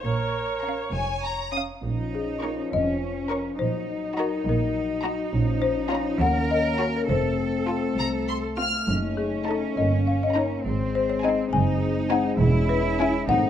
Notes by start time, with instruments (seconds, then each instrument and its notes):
0.03 double bass section A#1, cello section A#2, cor anglais A#4, viola section C#5
0.62 violin section C#4 F5 A#5
0.93 double bass section F1, cello section F2, violin section G#5
1.23 violin section A#5
1.52 violin section C#4 F5 D#6
1.82 double bass section A#1, french horn section F3 C#4, cello section D#4
2.15 marimba G#4
2.42 viola section C#4, violin section A#4 C#6, marimba A#4
2.71 double bass section F1, cello section C#4, marimba D#5
3.30 viola section C#4, violin section A#4 C#6, marimba C#5
3.59 double bass section A#1, french horn section F#3 D#4, cello section D#4, marimba C5
4.17 viola section D#4, violin section F#4 A#5, marimba A#4
4.47 double bass section A#1, marimba A#4
5.03 viola section D#4, violin section F#4 A#5
5.33 double bass section A#1, french horn section F3 C#4
5.62 marimba C5
5.90 viola section C#4, violin section F4 A#5, marimba C#5
6.19 double bass section D#2, french horn section A#3, cello section A#4, marimba F#5
6.51 marimba D#5
6.78 viola section C#4, violin section F#4 A#5, marimba C#5
6.96 marimba A#4
7.09 double bass section F1, french horn section A3 C4, cello section A4, marimba C5
7.68 viola section C4, violin section F4 A5
7.99 double bass section C2, violin section A#5
8.28 violin section C6
8.58 viola section C4, violin section F4 F6
8.88 double bass section F#1, cello section C#4, french horn section D#4
9.17 marimba G#4
9.47 violin section D#4 A5, viola section D#4, marimba A4
9.77 double bass section G1, french horn section A#3 C#4, marimba D#5
10.07 marimba F5
10.23 marimba D#5
10.35 viola section C#4, violin section D#4 A#5, marimba C#5
10.65 double bass section G#1, french horn section G#3 C4, cello section C4
10.95 marimba C5
11.10 marimba C#5
11.23 viola section C4, violin section D#4 G#5, marimba D#5
11.52 double bass section F#1, cello section D#4, marimba G#5
12.10 viola section C4, violin section D#4 G#5, marimba F#5
12.40 double bass section E1, french horn section C#4, cello section E4
12.69 marimba B4
12.99 viola section C#4, violin section E4 G#5, marimba C#5
13.28 double bass section G#1, french horn section A3 C4, cello section D#4, marimba F#5